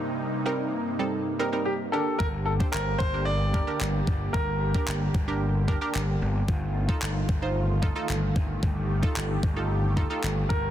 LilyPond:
<<
  \new Staff \with { instrumentName = "Grand piano" } { \time 4/4 \key g \minor \tempo 4 = 112 r2. g'8 a'8 | bes'8 a'8 bes'8 c''8 d''2 | bes'4. r2 r8 | r1 |
r2. r8 bes'8 | }
  \new Staff \with { instrumentName = "Synth stab" } { \time 4/4 \key g \minor <g c' ees' bes'>8 r16 <g c' ees' bes'>8. r16 <g c' ees' a'>8. <g c' ees' bes'>16 <g c' ees' bes'>8. <d' g' bes'>8~ | <d' g' bes'>8 r16 <d' g' c''>8. r16 <d' g' bes'>8. <d' g' bes'>16 <d' g' bes'>4~ <d' g' bes'>16~ | <d' g' bes'>8 r16 <d' g' bes'>8. r16 <d' g' bes'>8. <d' g' bes'>16 <d' g' bes'>4~ <d' g' bes'>16 | r8. <ees' f' a'>8. r16 <ees' f' c''>8. <ees' f' a'>16 <ees' f' a'>4~ <ees' f' a'>16~ |
<ees' f' a'>8 r16 <ees' f' a'>8. r16 <ees' f' a'>8. <ees' f' a'>16 <ees' f' a'>4~ <ees' f' a'>16 | }
  \new Staff \with { instrumentName = "Supersaw synth" } { \time 4/4 \key g \minor << { <g, ees'>2.~ <g, ees'>8 g'8~ | g'1~ | g'1 | f'1 |
g'1 | } \\ { <c bes>2.~ <c bes>8 <d bes>8~ | <d bes>1~ | <d bes>1 | <ees a>1~ |
<ees a>1 | } >> }
  \new Staff \with { instrumentName = "Slap bass" } { \clef bass \time 4/4 \key g \minor r1 | g,,4 g,,8 g,,4. g,,8 g,,8 | g,,4 g,,8 g,,4. g,,8 g,,8 | g,,4 g,,8 g,,4. g,,8 g,,8 |
g,,4 g,,8 g,,4. g,,8 g,,8 | }
  \new DrumStaff \with { instrumentName = "Drums" } \drummode { \time 4/4 r4 r4 r4 r4 | bd8. bd16 hc8 bd8 r8 bd8 hc8 bd8 | bd8. bd16 hc8 bd8 r8 bd8 hc4 | bd8. bd16 hc8 bd8 r8 bd8 hc8 bd8 |
bd8. bd16 hc8 bd8 r8 bd8 hc8 bd8 | }
>>